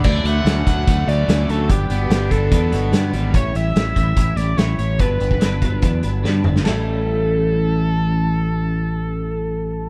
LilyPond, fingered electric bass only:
\new Staff \with { instrumentName = "Fingered electric bass" } { \clef bass \time 4/4 \key a \mixolydian \tempo 4 = 145 d,8 d,8 d,8 d,8 d,8 d,8 d,8 d,8 | g,,8 g,,8 g,,4 e,8 g,,8 g,8 gis,,8 | a,,8 a,,8 a,,8 a,,8 a,,8 a,,8 a,,8 a,,8 | g,,8 g,,8 g,,4 e,8 g,,8 g,8 g,,8 |
a,,1~ | a,,1 | }